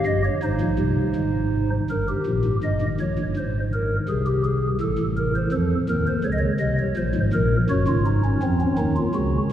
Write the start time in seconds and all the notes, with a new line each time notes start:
Already playing: G4
0.06 G1 G2 D#5
0.25 C#5
0.43 G#1 G#2 D#4 C5
0.61 A#1 A#2
0.79 C2 C3
1.16 G#1 G#2
1.90 G1 G2 A#4
2.09 G4
2.26 A#1 A#2
2.45 G#1 G#2
2.63 G1 G2 D#5
2.81 G#1 G#2
3.00 A#1 A#2 C#5
3.19 G1 G2
3.37 G#1 G#2 C5
3.73 A#4
4.09 C2 C3 G#4
4.27 G4
4.45 G#4
4.81 A1 A2 A4
4.98 A1 A2
5.17 A#4
5.35 C5
5.52 F2 F3 A4
5.89 D#2 D#3 A#4
6.07 C5
6.24 C#2 C#3 C#5
6.32 D#5
6.38 C#5
6.60 C2 C3 D#5
6.79 C#5
6.97 A#1 A#2 C5
7.15 G#1 G#2
7.33 A#1 A#2 A#4
7.70 F#1 F#2 F#4 C#5
7.88 G#1 G#2 F4
8.06 D#4
8.24 C#4
8.43 F2 F3 C4
8.61 C#4
8.78 D#2 D#3 D#4
8.96 F4
9.15 C#2 C#3 F#4